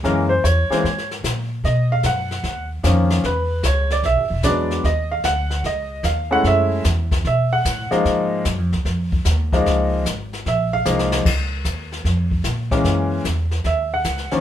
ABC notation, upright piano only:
X:1
M:4/4
L:1/8
Q:"Swing" 1/4=150
K:Gblyd
V:1 name="Upright piano"
B c d3 z3 | e f g3 z3 | =B2 d =d =e2 d2 | e f g2 e2 f g |
_f2 z2 f g2 z | z8 | z4 _f =f2 z | z8 |
z4 _f g2 z |]
V:2 name="Upright piano"
[_F,A,B,D] z2 [F,A,B,C] z4 | z6 [E,F,B,D]2 | z6 [^F,^G,=B,=D]2 | z6 z [A,=A,D_F]- |
[A,=A,D_F]2 z4 z [=F,_A,B,E]- | [F,A,B,E]2 z4 z [F,A,B,E]- | [F,A,B,E]2 z4 [F,A,B,E]2 | z6 z [_F,A,B,D]- |
[_F,A,B,D]2 z4 z [E,=F,B,D] |]